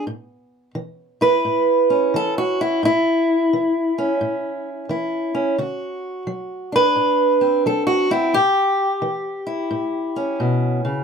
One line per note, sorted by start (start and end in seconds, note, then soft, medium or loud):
0.07 0.71 A2 medium
0.75 1.39 E3 medium
1.21 2.59 E4 soft
1.21 2.13 B4 medium
1.45 2.09 A2 medium
1.90 2.80 C#4 soft
2.14 2.78 E3 medium
2.14 2.37 A4 medium
2.38 2.60 F#4 medium
2.61 2.83 E4 medium
2.83 3.47 A2 medium
2.83 4.89 E4 medium
3.53 4.16 E3 medium
3.98 5.33 C#4 soft
4.21 4.84 A2 medium
4.89 5.53 E3 medium
4.89 5.56 E4 soft
5.35 5.55 C#4 soft
5.58 6.22 D3 medium
5.58 6.73 F#4 soft
6.27 6.91 F#3 medium
6.72 8.11 D4 soft
6.72 7.66 B4 loud
6.96 7.60 A2 medium
7.41 8.09 C4 soft
7.66 8.29 F#3 medium
7.66 7.86 A4 medium
7.87 8.10 F#4 medium
8.11 8.31 C4 soft
8.11 8.34 E4 medium
8.34 8.98 A2 medium
8.34 10.41 G4 loud
9.02 9.66 E3 medium
9.47 11.04 E4 soft
9.71 10.35 A2 medium
10.16 11.04 C#4 soft
10.40 10.84 B2 medium
10.85 11.04 C#3 medium